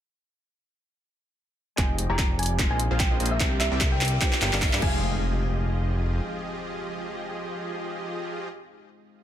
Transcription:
1.76 F1 F3 G#3 C4 D#4 F4 G4 G#4 D#5 G5 G#5, kick, clap, closed hi-hat, riser
1.98 closed hi-hat
2.10 F1 F3 F4 G4 G#4 D5 A#5
2.19 kick, clap, closed hi-hat
2.39 G#5, closed hi-hat
2.43 closed hi-hat
2.46 closed hi-hat
2.57 G#3 C4 D#4 F4, kick, clap, closed hi-hat
2.70 A#1 A#3 F4 G#4 C5 D#5 G#5
2.79 closed hi-hat
2.91 A#1 A#3 F4 G#4 C5 F5
3.00 G5, kick, clap, closed hi-hat
3.11 A#1 A#3 F4 G#4 C5 D#5
3.20 A#1 A#3 F4 G#4 C5 D#5, closed hi-hat
3.26 closed hi-hat
3.31 E5
3.38 C2 A#3 C4 D4 E4 G4 D5, kick, clap, closed hi-hat
3.42 G4
3.60 E5, clap, closed hi-hat
3.72 C2 C4 G4 A#4 D5 E5
3.81 kick, clap, closed hi-hat
3.92 G5
4.01 clap, closed hi-hat
4.05 closed hi-hat
4.08 closed hi-hat
4.19 A#3 D4 F4 G4 G5, kick, clap, closed hi-hat
4.33 clap
4.42 G1 G3 G4 A#4 D5 G5, clap, closed hi-hat
4.53 G1 G3 G4 A#4 D5 F5, clap
4.62 kick, clap, closed hi-hat
4.73 G2 G3 G4 A#4 D5 F5, clap
4.79 F1 F3 G#3 C4 F4 G4 G#4 D#5 G#5, kick, crash, impact
4.83 D#4 F5

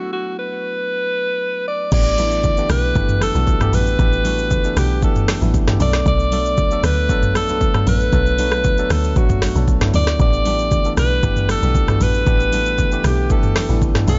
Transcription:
Already playing: F#3 A3 B3 D4 E4 F#4
0.13 F#4
0.38 B4
1.67 D5
1.92 A1 E3 A3 B3 D4 G4 D5, kick, crash, shaker
2.06 shaker
2.18 E3 A3 B3 D4 E4, open hi-hat, high conga, shaker
2.31 shaker
2.43 kick, low conga, shaker
2.57 E3 A3 B3 D4 G4, shaker
2.70 B1 B4, cross-stick, open hi-hat, high conga, low conga, shaker
2.95 G1 E3 A3 B3 D4 G4, kick, shaker
3.09 mid tom, shaker
3.21 A4, cross-stick, open hi-hat, high conga, shaker
3.35 B1 E3 A3 B3 D4 F#4, high conga, shaker
3.47 kick, low conga, shaker
3.61 E3 A3 B3 D4 G4, cross-stick, mid tom, shaker
3.73 A1 B4, open hi-hat, high conga, shaker
3.87 shaker
3.99 A1 E3 A3 B3 D4 G4, kick, shaker
4.13 shaker
4.25 E3 A3 B3 D4 F#4, open hi-hat, high conga, shaker
4.38 shaker
4.51 kick, low conga, shaker
4.64 E3 A3 B3 D4 A4, shaker
4.77 B1 G4, cross-stick, open hi-hat, high conga, low conga, shaker
5.02 G1 E3 A3 B3 D4 G4 A4, kick, shaker
5.16 mid tom, shaker
5.28 cross-stick, snare, open hi-hat, high conga, shaker
5.42 A1 E3 A3 B3 D4 E4, high conga, shaker
5.54 kick, low conga, shaker
5.68 E3 A3 B3 D4 G4, cross-stick, snare, mid tom, shaker
5.80 B1 F#3 A3 B3 D4 A4 D5, open hi-hat, high conga, shaker
5.93 cross-stick, snare, shaker
6.06 B1 D5, kick, shaker
6.20 shaker
6.32 F#3 A3 B3 D4 A4, open hi-hat, high conga, shaker
6.45 shaker
6.57 kick, low conga, shaker
6.71 F#3 A3 B3 D4 A4, shaker
6.83 D2 B4, cross-stick, open hi-hat, high conga, low conga, shaker
7.09 A1 F#3 A3 B3 D4 A4, kick, shaker
7.23 mid tom, shaker
7.35 A4, cross-stick, open hi-hat, high conga, shaker
7.49 B1 F#3 A3 B3 D4 B4, high conga, shaker
7.60 kick, low conga, shaker
7.74 F#3 A3 B3 D4 A4, cross-stick, mid tom, shaker
7.87 A1 B4, open hi-hat, high conga, shaker
8.00 shaker
8.13 B1 F#3 A3 B3 D4 A4, kick, shaker
8.26 shaker
8.38 F#3 A3 B3 D4 B4, open hi-hat, high conga, shaker
8.52 cross-stick, shaker
8.64 kick, low conga, shaker
8.78 F#3 A3 B3 D4 A4, shaker
8.90 D2 A4, cross-stick, open hi-hat, high conga, low conga, shaker
9.04 shaker
9.16 A1 F#3 A3 B3 D4 F#4, kick, shaker
9.29 kick, mid tom, shaker
9.42 cross-stick, snare, open hi-hat, high conga, shaker
9.55 B1 F#3 A3 B3 D4 A4, high conga, shaker
9.67 kick, low conga, shaker
9.81 F#3 A3 B3 D4 E4, cross-stick, snare, mid tom, shaker
9.94 D2 D5, open hi-hat, high conga, shaker
10.07 cross-stick, snare, shaker
10.20 A1 E3 A3 B3 D4 G4 D5, kick, shaker
10.33 shaker
10.45 E3 A3 B3 D4 G4, open hi-hat, high conga, shaker
10.59 shaker
10.71 kick, low conga, shaker
10.85 E3 A3 B3 D4 A4, shaker
10.97 B1 B4, cross-stick, open hi-hat, high conga, low conga, shaker
11.23 G1 E3 A3 B3 D4 G4, kick, shaker
11.36 mid tom, shaker
11.49 A4, cross-stick, open hi-hat, high conga, shaker
11.62 B1 E3 A3 B3 D4 G4, high conga, shaker
11.75 kick, low conga, shaker
11.88 E3 A3 B3 D4 F#4, cross-stick, mid tom, shaker
12.01 A1 B4, open hi-hat, high conga, shaker
12.14 shaker
12.27 A1 E3 A3 B3 D4 G4, kick, shaker
12.40 shaker
12.53 E3 A3 B3 D4 A4, open hi-hat, high conga, shaker
12.66 shaker
12.78 kick, low conga, shaker
12.92 E3 A3 B3 D4 G4, shaker
13.04 B1 G4, cross-stick, open hi-hat, high conga, low conga, shaker
13.30 G1 E3 A3 B3 D4 G4 A4, kick, shaker
13.43 mid tom, shaker
13.56 cross-stick, snare, open hi-hat, high conga, shaker
13.69 A1 E3 A3 B3 D4 E4, high conga, shaker
13.82 kick, low conga, shaker
13.95 E3 A3 B3 D4 A4, cross-stick, snare, mid tom, shaker
14.08 B1 F#3 A3 B3 D4 A4, open hi-hat, high conga, shaker

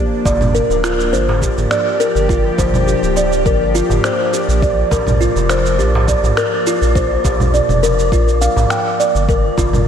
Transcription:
Already playing: F3 A#3 D4 D5
0.25 G1 D5, kick, darbuka tek, cabasa
0.41 low conga, darbuka dum, cabasa
0.55 A#4, cabasa
0.70 D1, darbuka tek, cabasa
0.76 G4
0.84 F4, finger snap, darbuka ka, cabasa
1.00 cabasa
1.13 G1 C5, cabasa
1.29 darbuka tek, darbuka dum
1.42 G4, kick, cabasa
1.57 G1, darbuka dum, cabasa
1.71 D5, finger snap, cabasa
2.00 A#4, cabasa
2.15 G1, cabasa
2.29 F4, kick, cabasa
2.45 darbuka ka, darbuka tek
2.58 G1 C5, kick, darbuka tek, cabasa
2.74 low conga, cabasa
2.88 G4, cabasa
3.03 D1, cabasa
3.16 D5, darbuka ka, cabasa
3.32 cabasa
3.46 G1 A#4, kick, cabasa
3.75 F4, cabasa
3.90 G1, darbuka dum, cabasa
4.04 C5, finger snap, cabasa
4.33 G4, cabasa
4.48 A#1, cabasa
4.62 F3 D5, kick, cabasa
4.91 A#1 A#4, kick, darbuka tek, cabasa
5.07 low conga, darbuka dum, cabasa
5.21 F4, cabasa
5.36 F1, darbuka tek, cabasa
5.50 C5, finger snap, darbuka ka, cabasa
5.66 cabasa
5.79 A#1 G4, cabasa
5.95 darbuka tek, darbuka dum
6.08 D5, kick, cabasa
6.23 A#1, darbuka dum, cabasa
6.37 A#4, finger snap, cabasa
6.67 F4, cabasa
6.82 A#1, cabasa
6.95 C5, kick, cabasa
7.11 darbuka ka, darbuka tek
7.25 A#1 G4, kick, darbuka tek, cabasa
7.40 darbuka ka, low conga, cabasa
7.54 D5, cabasa
7.69 F1, low conga, cabasa
7.83 A#4, darbuka ka, cabasa
7.99 cabasa
8.12 A#1 F4, kick, cabasa
8.28 cabasa
8.41 F5, cabasa
8.56 A#1, darbuka dum, cabasa
8.70 G5, finger snap, cabasa
9.00 D5, cabasa
9.15 G1, cabasa
9.29 A#4, kick, cabasa
9.57 G1 F4, kick, darbuka tek, cabasa
9.72 A#3, low conga, darbuka dum, cabasa

